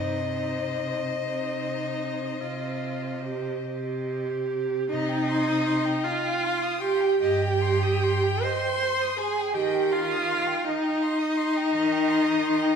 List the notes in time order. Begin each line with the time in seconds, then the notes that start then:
Already playing: C3 D#4 C5 D#5
0.35 D#4
1.18 C3 D#4
2.41 C3 F4
3.24 G4
3.65 C3 G4
4.90 C3 D#4 D#5
5.09 G5
5.29 C6
5.48 D#6
5.67 C6
5.85 G5
6.04 F4 D#5 F5
6.24 G5
6.45 C6
6.62 D#6
6.80 G4 G5 C6
7.01 G5
7.20 G2 G4 D#5 G5
7.42 G5
7.61 C6
7.83 D#6
8.04 C6
8.24 G5
8.42 C5 D#5 C6
8.64 G5
8.83 C6
9.01 D#6
9.18 G#4 G#5 C6
9.38 G5
9.55 D#3 G4 D#5 G5
9.74 G5
9.92 F4 F5 C6
10.12 D#6
10.29 C6
10.47 G5
10.64 D#4 D#5
10.83 G5
11.02 C6
11.18 D#6
11.37 C6
11.57 G5
11.74 D#3 D#5
11.92 G5
12.10 C6
12.27 D#6
12.45 C6
12.62 G5